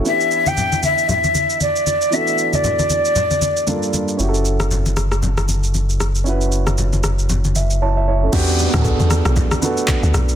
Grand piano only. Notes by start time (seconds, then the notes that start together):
0.03 E3 B3 D4 E4
0.09 G4
2.10 E3 B3 D4 F#4
2.16 A4
3.67 G2 A#3 D4 F4 A4
4.17 C#4 E4 F#4
4.22 G4
4.29 A4
6.24 C#4 E4 F#4
6.29 B4
7.56 E5
7.82 E4 C#5 A5
7.97 E5
8.08 E4 C#5
8.23 C#4 A4
8.32 B3 D4 F#4 G4
8.73 B3 D4 F#4 G#4
8.82 A4
9.62 B3 D4 F#4 A4